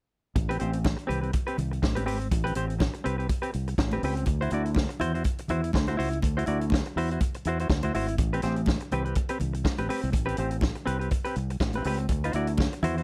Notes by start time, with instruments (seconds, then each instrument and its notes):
0.36 fingered electric bass A1, muted clean electric guitar stroke, kick, closed hi-hat, muted conga
0.49 clean electric guitar C4 G4 B4, closed hi-hat
0.59 fingered electric bass A1, clean electric guitar C4 G4 C5, closed hi-hat
0.73 muted clean electric guitar stroke, closed hi-hat
0.84 muted clean electric guitar stroke, kick, snare, high conga
0.97 muted clean electric guitar stroke, closed hi-hat
1.07 fingered electric bass C2, clean electric guitar C4 G4 B4, closed hi-hat, low conga
1.21 clean electric guitar C4 G4 B4, closed hi-hat
1.33 muted clean electric guitar stroke, kick, closed hi-hat, muted conga
1.47 clean electric guitar C4 G4 B4, closed hi-hat
1.58 fingered electric bass C2, closed hi-hat, low conga
1.71 muted clean electric guitar stroke, closed hi-hat
1.82 fingered electric bass A1, muted clean electric guitar stroke, kick, snare, high conga
1.95 clean electric guitar C4 G4 B4, closed hi-hat, high conga
2.06 fingered electric bass G#1, clean electric guitar C4 G4 B4, open hi-hat
2.20 muted clean electric guitar stroke, closed hi-hat
2.31 fingered electric bass A1, muted clean electric guitar stroke, kick, closed hi-hat, muted conga
2.44 clean electric guitar C4 G4 B4, closed hi-hat
2.55 fingered electric bass A1, clean electric guitar C4 G4 C5, closed hi-hat
2.68 muted clean electric guitar stroke, closed hi-hat
2.79 muted clean electric guitar stroke, kick, snare, high conga
2.94 muted clean electric guitar stroke, closed hi-hat
3.04 fingered electric bass C2, clean electric guitar C4 G4 B4, closed hi-hat
3.18 clean electric guitar C4 G4 B4, closed hi-hat
3.29 muted clean electric guitar stroke, kick, closed hi-hat, muted conga
3.42 clean electric guitar C4 G4 B4, closed hi-hat
3.53 fingered electric bass C2, muted clean electric guitar stroke, closed hi-hat
3.68 muted clean electric guitar stroke, closed hi-hat
3.78 fingered electric bass A1, muted clean electric guitar stroke, kick, snare, high conga
3.91 clean electric guitar C4 G4 B4, closed hi-hat, high conga
4.03 fingered electric bass C#2, clean electric guitar C4 G4 B4, open hi-hat
4.17 muted clean electric guitar stroke, closed hi-hat
4.26 fingered electric bass D2, muted clean electric guitar stroke, kick, closed hi-hat, muted conga
4.41 clean electric guitar E4 F#4 C5, closed hi-hat
4.50 fingered electric bass D2, clean electric guitar E4 F#4 D5, closed hi-hat, muted conga
4.66 muted clean electric guitar stroke, closed hi-hat
4.75 muted clean electric guitar stroke, kick, snare, high conga
4.89 muted clean electric guitar stroke, closed hi-hat
5.00 fingered electric bass E2, clean electric guitar E4 F#4 C5, closed hi-hat, low conga
5.14 clean electric guitar E4 F#4 C5, closed hi-hat
5.24 kick, closed hi-hat, muted conga
5.38 muted clean electric guitar stroke, closed hi-hat
5.48 fingered electric bass E2, clean electric guitar E4 F#4 C5, closed hi-hat, low conga
5.63 muted clean electric guitar stroke, closed hi-hat
5.73 fingered electric bass D2, muted clean electric guitar stroke, kick, snare, high conga
5.87 clean electric guitar E4 F#4 C5, closed hi-hat, high conga
5.97 fingered electric bass C#2, clean electric guitar E4 F#4 C5, open hi-hat
6.11 muted clean electric guitar stroke, closed hi-hat
6.22 fingered electric bass D2, muted clean electric guitar stroke, kick, closed hi-hat, muted conga
6.37 clean electric guitar E4 F#4 C5, closed hi-hat
6.46 fingered electric bass D2, clean electric guitar E4 F#4 D5, closed hi-hat, muted conga
6.61 muted clean electric guitar stroke, closed hi-hat
6.70 muted clean electric guitar stroke, kick, snare, high conga
6.85 muted clean electric guitar stroke, closed hi-hat
6.96 fingered electric bass E2, clean electric guitar E4 F#4 C5, open hi-hat
7.11 clean electric guitar E4 F#4 C5, closed hi-hat
7.21 muted clean electric guitar stroke, kick, closed hi-hat, muted conga
7.34 muted clean electric guitar stroke, closed hi-hat
7.45 fingered electric bass E2, clean electric guitar E4 F#4, closed hi-hat
7.49 clean electric guitar C5
7.59 clean electric guitar E4 F#4 C5, closed hi-hat
7.69 fingered electric bass D2, kick, snare, high conga
7.82 clean electric guitar E4 F#4 C5, closed hi-hat, high conga
7.94 fingered electric bass G#1, clean electric guitar E4 F#4 C5, open hi-hat
8.08 muted clean electric guitar stroke, closed hi-hat
8.18 fingered electric bass A1, muted clean electric guitar stroke, kick, closed hi-hat, muted conga
8.33 clean electric guitar C4 G4 B4, closed hi-hat
8.42 fingered electric bass A1, clean electric guitar C4 G4 C5, snare, closed hi-hat
8.56 muted clean electric guitar stroke, closed hi-hat
8.66 muted clean electric guitar stroke, kick, snare, high conga
8.80 muted clean electric guitar stroke, closed hi-hat
8.91 fingered electric bass C2, clean electric guitar C4 G4 B4, closed hi-hat, low conga
9.05 clean electric guitar C4 G4 B4, closed hi-hat
9.15 muted clean electric guitar stroke, kick, closed hi-hat, muted conga
9.29 clean electric guitar C4 G4 B4, closed hi-hat
9.40 fingered electric bass C2, muted clean electric guitar stroke, closed hi-hat, low conga
9.53 muted clean electric guitar stroke, closed hi-hat
9.64 muted clean electric guitar stroke, kick, snare, high conga
9.78 fingered electric bass A1, clean electric guitar C4 G4 B4, closed hi-hat, high conga
9.89 clean electric guitar C4 G4 B4, open hi-hat
10.03 fingered electric bass C2, muted clean electric guitar stroke, closed hi-hat
10.12 fingered electric bass A1, muted clean electric guitar stroke, kick, closed hi-hat, muted conga
10.26 clean electric guitar C4 G4 B4, closed hi-hat
10.37 fingered electric bass A1, clean electric guitar C4 G4 C5, closed hi-hat
10.51 muted clean electric guitar stroke, closed hi-hat
10.61 muted clean electric guitar stroke, kick, snare, high conga
10.75 muted clean electric guitar stroke, closed hi-hat
10.86 fingered electric bass C2, clean electric guitar C4 G4 B4, closed hi-hat
10.99 clean electric guitar C4 G4 B4, closed hi-hat
11.11 muted clean electric guitar stroke, kick, closed hi-hat, muted conga
11.25 clean electric guitar C4 G4 B4, closed hi-hat
11.36 fingered electric bass C2, closed hi-hat
11.50 muted clean electric guitar stroke, closed hi-hat
11.60 fingered electric bass A1, muted clean electric guitar stroke, kick, snare, high conga
11.73 clean electric guitar B4, closed hi-hat, high conga
11.77 clean electric guitar C4 G4
11.84 fingered electric bass C#2, clean electric guitar C4 G4 B4, open hi-hat
11.98 muted clean electric guitar stroke, closed hi-hat
12.09 fingered electric bass D2, muted clean electric guitar stroke, kick, closed hi-hat, muted conga
12.24 clean electric guitar E4 F#4 C5, closed hi-hat
12.33 fingered electric bass D2, clean electric guitar E4 F#4 D5, closed hi-hat, muted conga
12.47 muted clean electric guitar stroke, closed hi-hat
12.58 muted clean electric guitar stroke, kick, snare, high conga
12.73 muted clean electric guitar stroke, closed hi-hat
12.83 fingered electric bass E2, clean electric guitar E4 F#4 C5, closed hi-hat, low conga
12.98 clean electric guitar E4 F#4 C5, closed hi-hat